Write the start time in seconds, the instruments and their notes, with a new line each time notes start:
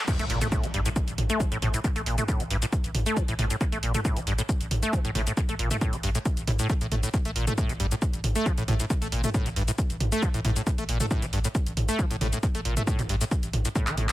0.08 acid bass A2, kick, closed hi-hat, crash, impact, shaker
0.19 sub bass A1, acid bass A3, closed hi-hat, shaker
0.30 sub bass A1, acid bass A#2, open hi-hat
0.41 acid bass A3, closed hi-hat, mid tom, shaker
0.52 acid bass A2, kick, closed hi-hat, shaker
0.64 sub bass A1, acid bass D3, closed hi-hat, shaker
0.74 sub bass A1, acid bass G2, open hi-hat
0.86 acid bass A2, closed hi-hat, shaker
0.96 kick, closed hi-hat, shaker
1.08 sub bass A1, closed hi-hat, shaker
1.18 sub bass A1, mid tom, open hi-hat
1.30 acid bass A3, closed hi-hat, shaker
1.40 acid bass E3, kick, closed hi-hat, shaker
1.52 sub bass A1, acid bass A2, closed hi-hat, shaker
1.62 sub bass A1, acid bass A2, mid tom, open hi-hat
1.74 acid bass A2, closed hi-hat, shaker
1.84 acid bass A2, kick, closed hi-hat, shaker
1.96 sub bass A1, acid bass A3, closed hi-hat, shaker
2.06 sub bass A1, acid bass A#2, open hi-hat
2.18 acid bass A3, closed hi-hat, mid tom, shaker
2.28 acid bass A2, kick, closed hi-hat, shaker
2.40 sub bass A1, acid bass D3, closed hi-hat, shaker
2.50 sub bass A1, acid bass G2, open hi-hat
2.62 acid bass A2, closed hi-hat, shaker
2.73 kick, closed hi-hat, shaker
2.84 sub bass A1, closed hi-hat, shaker
2.95 sub bass A1, mid tom, open hi-hat
3.06 acid bass A3, closed hi-hat, shaker
3.17 acid bass E3, kick, closed hi-hat, shaker
3.28 sub bass A1, acid bass A2, closed hi-hat, shaker
3.39 sub bass A1, acid bass A2, mid tom, open hi-hat
3.50 acid bass A2, closed hi-hat, shaker
3.61 acid bass A2, kick, closed hi-hat, shaker
3.72 sub bass A1, acid bass A3, closed hi-hat, shaker
3.83 sub bass A1, acid bass A#2, open hi-hat
3.94 acid bass A3, closed hi-hat, mid tom, shaker
4.05 acid bass A2, kick, closed hi-hat, shaker
4.16 sub bass A1, acid bass D3, closed hi-hat, shaker
4.27 sub bass A1, acid bass G2, open hi-hat
4.38 acid bass A2, closed hi-hat, shaker
4.49 kick, closed hi-hat, shaker
4.61 sub bass A1, closed hi-hat, shaker
4.71 sub bass A1, mid tom, open hi-hat
4.83 acid bass A3, closed hi-hat, shaker
4.93 acid bass E3, kick, closed hi-hat, shaker
5.05 sub bass A1, acid bass A2, closed hi-hat, shaker
5.15 sub bass A1, acid bass A2, mid tom, open hi-hat
5.27 acid bass A2, closed hi-hat, shaker
5.37 acid bass A2, kick, closed hi-hat, shaker
5.49 sub bass A1, acid bass A3, closed hi-hat, shaker
5.59 sub bass A1, acid bass A#2, open hi-hat
5.71 acid bass A3, closed hi-hat, mid tom, shaker
5.81 acid bass A2, kick, closed hi-hat, shaker
5.93 sub bass A1, acid bass D3, closed hi-hat, shaker
6.03 sub bass A1, acid bass G2, open hi-hat
6.15 acid bass A2, closed hi-hat, shaker
6.25 kick, closed hi-hat, shaker
6.37 sub bass A1, closed hi-hat, shaker
6.47 sub bass A1, acid bass A2, mid tom, open hi-hat
6.59 acid bass A2, closed hi-hat, shaker
6.70 kick, closed hi-hat, shaker
6.81 sub bass A1, acid bass A2, closed hi-hat, shaker
6.92 sub bass A1, acid bass A3, mid tom, open hi-hat
7.03 acid bass A2, closed hi-hat, shaker
7.14 acid bass A2, kick, closed hi-hat, shaker
7.25 sub bass A1, acid bass A3, closed hi-hat, shaker
7.36 sub bass A1, acid bass A#2, open hi-hat
7.47 acid bass A3, closed hi-hat, mid tom, shaker
7.58 acid bass A2, kick, closed hi-hat, shaker
7.69 sub bass A1, acid bass D3, closed hi-hat, shaker
7.80 sub bass A1, acid bass G2, open hi-hat
7.91 acid bass A2, closed hi-hat, shaker
8.02 kick, closed hi-hat, shaker
8.13 sub bass A1, closed hi-hat, shaker
8.24 sub bass A1, mid tom, open hi-hat
8.36 acid bass A3, closed hi-hat, shaker
8.46 acid bass E3, kick, closed hi-hat, shaker
8.58 sub bass A1, acid bass A2, closed hi-hat, shaker
8.68 sub bass A1, acid bass A2, mid tom, open hi-hat
8.80 acid bass A2, closed hi-hat, shaker
8.90 acid bass A2, kick, closed hi-hat, shaker
9.02 sub bass A1, acid bass A3, closed hi-hat, shaker
9.12 sub bass A1, acid bass A#2, open hi-hat
9.24 acid bass A3, closed hi-hat, mid tom, shaker
9.34 acid bass A2, kick, closed hi-hat, shaker
9.46 sub bass A1, acid bass D3, closed hi-hat, shaker
9.56 sub bass A1, acid bass G2, open hi-hat
9.68 acid bass A2, closed hi-hat, shaker
9.78 kick, closed hi-hat, shaker
9.90 sub bass A1, closed hi-hat, shaker
10.00 sub bass A1, mid tom, open hi-hat
10.12 acid bass A3, closed hi-hat, shaker
10.23 acid bass E3, kick, closed hi-hat, shaker
10.34 sub bass A1, acid bass A2, closed hi-hat, shaker
10.45 sub bass A1, acid bass A2, mid tom, open hi-hat
10.56 acid bass A2, closed hi-hat, shaker
10.67 acid bass A2, kick, closed hi-hat, shaker
10.78 sub bass A1, acid bass A3, closed hi-hat, shaker
10.89 sub bass A1, acid bass A#2, open hi-hat
11.00 acid bass A3, closed hi-hat, mid tom, shaker
11.11 acid bass A2, kick, closed hi-hat, shaker
11.22 sub bass A1, acid bass D3, closed hi-hat, shaker
11.33 sub bass A1, acid bass G2, open hi-hat
11.44 acid bass A2, closed hi-hat, shaker
11.55 kick, closed hi-hat, shaker
11.66 sub bass A1, closed hi-hat, shaker
11.77 sub bass A1, mid tom, open hi-hat
11.89 acid bass A3, closed hi-hat, shaker
11.99 acid bass E3, kick, closed hi-hat, shaker
12.11 sub bass A1, acid bass A2, closed hi-hat, shaker
12.21 sub bass A1, acid bass A2, mid tom, open hi-hat
12.33 acid bass A2, closed hi-hat, shaker
12.43 acid bass A2, kick, closed hi-hat, shaker
12.55 sub bass A1, acid bass A3, closed hi-hat, shaker
12.65 sub bass A1, acid bass A#2, open hi-hat
12.77 acid bass A3, closed hi-hat, mid tom, shaker
12.87 acid bass A2, kick, closed hi-hat, shaker
12.99 sub bass A1, acid bass D3, closed hi-hat, mid tom, shaker
13.09 sub bass A1, acid bass G2, open hi-hat
13.21 acid bass A2, closed hi-hat, shaker
13.31 kick, closed hi-hat, shaker
13.43 sub bass A1, closed hi-hat, shaker
13.53 sub bass A1, mid tom, open hi-hat
13.65 acid bass A2, closed hi-hat, shaker
13.75 acid bass A2, kick, closed hi-hat, shaker
13.87 sub bass A1, acid bass E3, clap, closed hi-hat, shaker
13.97 sub bass A1, acid bass A2, mid tom, open hi-hat
14.09 acid bass A2, clap, closed hi-hat, shaker